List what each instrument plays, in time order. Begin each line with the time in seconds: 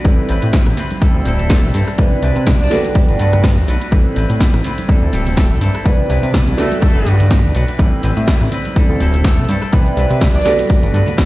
0.04 analog synth bass A1, grand piano G3 C4 E4 A4 B4, clean electric guitar G3 C4 E4 B4, kick, closed hi-hat, shaker
0.19 shaker
0.28 analog synth bass A1, clean electric guitar G3 C4 E4 B4, open hi-hat, shaker
0.42 analog synth bass A2, clean electric guitar C4 E4 B4, closed hi-hat, shaker
0.53 clean electric guitar G3 C4 E4 B4, kick, snare, closed hi-hat, shaker
0.66 analog synth bass A1, clean electric guitar C4 E4 B4, cross-stick, closed hi-hat
0.77 clean electric guitar G3 C4 E4 B4, open hi-hat, low conga, shaker
0.91 closed hi-hat, high conga, shaker
1.01 analog synth bass D2, clean electric guitar G3 C4 E4 A4, grand piano G3 C4 D4 E4 A4, kick, closed hi-hat, shaker
1.14 analog synth bass D2, clean electric guitar C4 E4 A4
1.25 analog synth bass D1, clean electric guitar G3 C4 E4 A4, open hi-hat, high conga, shaker
1.38 clean electric guitar C4 E4 A4, closed hi-hat, low conga, shaker
1.49 clean electric guitar G3 C4 E4 A4, horn section A3 A4, kick, snare, closed hi-hat, shaker
1.63 analog synth bass C2, horn section A3 A4, shaker
1.73 analog synth bass G2, clean electric guitar G3 C4 E4 A4, open hi-hat, shaker
1.87 cross-stick, closed hi-hat, shaker
1.98 analog synth bass C2, grand piano G3 C4 D4 E4 B4, clean electric guitar G3 D4 E4 B4, kick, closed hi-hat, shaker
2.12 analog synth bass C2, shaker
2.22 analog synth bass C2, clean electric guitar G3 D4 E4 B4, open hi-hat, shaker
2.35 analog synth bass C3, clean electric guitar D4 E4 B4, closed hi-hat, shaker
2.46 clean electric guitar G3 D4 E4 B4, kick, snare, closed hi-hat, shaker
2.59 analog synth bass C2, horn section D4 D5, clean electric guitar D4 E4 B4, closed hi-hat, high conga, shaker
2.70 grand piano G3 B3 D4 F#4 A4, clean electric guitar A3 D4 F#4 B4, snare, open hi-hat, low conga, shaker
2.84 closed hi-hat, high conga, shaker
2.95 kick, closed hi-hat, shaker
3.08 analog synth bass G1, clean electric guitar D4 F#4 B4, closed hi-hat
3.19 analog synth bass G2, clean electric guitar A3 D4 F#4 B4, open hi-hat, shaker
3.32 clean electric guitar D4 F#4 B4, cross-stick, closed hi-hat, low conga, shaker
3.43 clean electric guitar A3 D4 B4, kick, snare, closed hi-hat, shaker
3.57 analog synth bass D2, shaker
3.67 analog synth bass B1, clean electric guitar A3 D4 F#4 B4, open hi-hat, shaker
3.80 clean electric guitar D4 F#4 B4, closed hi-hat, shaker
3.91 analog synth bass A1, clean electric guitar G3 C4 E4 B4, grand piano G3 C4 E4 A4 B4, kick, closed hi-hat, shaker
4.05 shaker
4.15 analog synth bass A1, clean electric guitar G3 C4 E4 B4, open hi-hat, shaker
4.29 analog synth bass A2, clean electric guitar C4 E4 B4, closed hi-hat, shaker
4.40 clean electric guitar G3 C4 E4 B4, kick, snare, closed hi-hat
4.53 analog synth bass A1, clean electric guitar C4 E4 B4, cross-stick, closed hi-hat, shaker
4.64 clean electric guitar G3 C4 E4 B4, open hi-hat, low conga, shaker
4.78 closed hi-hat, high conga, shaker
4.88 analog synth bass D2, grand piano G3 C4 D4 E4 A4, clean electric guitar G3 C4 E4 A4, kick, closed hi-hat, shaker
5.01 analog synth bass D2, clean electric guitar C4 E4 A4
5.12 analog synth bass D1, clean electric guitar G3 C4 E4 A4, open hi-hat, high conga, shaker
5.25 clean electric guitar C4 E4 A4, closed hi-hat, low conga, shaker
5.36 clean electric guitar G3 E4 A4, horn section A3 A4, kick, snare, closed hi-hat, shaker
5.50 analog synth bass C2, horn section A3 A4, shaker
5.60 analog synth bass G2, clean electric guitar G3 C4 E4 A4, open hi-hat, shaker
5.74 clean electric guitar C4 E4 A4, cross-stick, closed hi-hat, shaker
5.85 analog synth bass C2, grand piano G3 C4 D4 E4 B4, clean electric guitar G3 D4 E4 B4, kick, closed hi-hat, shaker
5.99 analog synth bass C2, shaker
6.08 analog synth bass C2, clean electric guitar G3 D4 E4 B4, open hi-hat, shaker
6.22 analog synth bass C3, clean electric guitar D4 E4 B4, closed hi-hat, shaker
6.33 clean electric guitar G3 D4 E4 B4, kick, snare, closed hi-hat, shaker
6.46 analog synth bass C2, clean electric guitar D4 E4 B4, closed hi-hat, high conga, shaker
6.57 grand piano G3 B3 D4 F#4 A4, clean electric guitar A3 D4 F#4 B4, horn section A3 A4, snare, open hi-hat, low conga, shaker
6.72 closed hi-hat, high conga, shaker
6.81 horn section A3 A4, kick, closed hi-hat, shaker
6.95 analog synth bass G1, clean electric guitar D4 F#4 B4
7.05 analog synth bass G2, clean electric guitar A3 D4 F#4 B4, open hi-hat, shaker
7.19 clean electric guitar D4 F#4 B4, closed hi-hat, low conga, shaker
7.30 clean electric guitar A3 D4 B4, kick, snare, closed hi-hat, shaker
7.44 analog synth bass D2, shaker
7.54 analog synth bass B1, clean electric guitar A3 D4 F#4 B4, open hi-hat, shaker
7.67 clean electric guitar D4 F#4 B4, closed hi-hat, shaker
7.78 analog synth bass A1, clean electric guitar G3 C4 E4 B4, grand piano G3 C4 E4 A4 B4, kick, closed hi-hat, shaker
7.94 shaker
8.02 analog synth bass A1, clean electric guitar G3 C4 E4 B4, open hi-hat, shaker
8.16 analog synth bass A2, clean electric guitar C4 E4 B4, closed hi-hat, shaker
8.27 clean electric guitar G3 C4 E4 B4, kick, snare, closed hi-hat, shaker
8.40 analog synth bass A1, clean electric guitar C4 E4 B4, cross-stick, closed hi-hat, shaker
8.51 clean electric guitar G3 C4 E4 B4, open hi-hat, low conga, shaker
8.65 closed hi-hat, high conga, shaker
8.75 analog synth bass D2, clean electric guitar G3 C4 E4 A4, grand piano G3 C4 D4 E4 A4, kick, closed hi-hat, shaker
8.89 analog synth bass D2, clean electric guitar C4 E4 A4
9.00 analog synth bass D1, clean electric guitar G3 C4 E4 A4, open hi-hat, high conga, shaker
9.13 clean electric guitar C4 E4 A4, closed hi-hat, low conga, shaker
9.24 clean electric guitar G3 C4 E4 A4, horn section A3 A4, kick, snare, closed hi-hat, shaker
9.37 analog synth bass C2, horn section A3 A4, shaker
9.48 analog synth bass G2, clean electric guitar G3 C4 E4 A4, open hi-hat, shaker
9.61 clean electric guitar C4 E4 A4, cross-stick, closed hi-hat, shaker
9.72 analog synth bass C2, grand piano G3 C4 D4 E4 B4, clean electric guitar G3 D4 E4 B4, kick, closed hi-hat, shaker
9.86 analog synth bass C2, closed hi-hat, shaker
9.96 analog synth bass C2, clean electric guitar G3 D4 E4 B4, open hi-hat, shaker
10.10 analog synth bass C3, clean electric guitar D4 E4 B4, closed hi-hat, shaker
10.21 clean electric guitar G3 D4 E4 B4, kick, snare, closed hi-hat, shaker
10.34 analog synth bass C2, horn section D4 D5, clean electric guitar D4 E4 B4, closed hi-hat, high conga, shaker
10.44 grand piano G3 B3 D4 F#4 A4, clean electric guitar A3 D4 F#4 B4, snare, open hi-hat, low conga, shaker
10.59 closed hi-hat, high conga, shaker
10.70 kick, closed hi-hat, shaker
10.82 analog synth bass G1, clean electric guitar D4 F#4 B4, closed hi-hat, low conga, shaker
10.93 analog synth bass G2, clean electric guitar A3 D4 F#4 B4, open hi-hat, shaker
11.06 clean electric guitar D4 F#4 B4, closed hi-hat, low conga, shaker
11.17 clean electric guitar A3 B4, kick, snare, closed hi-hat, shaker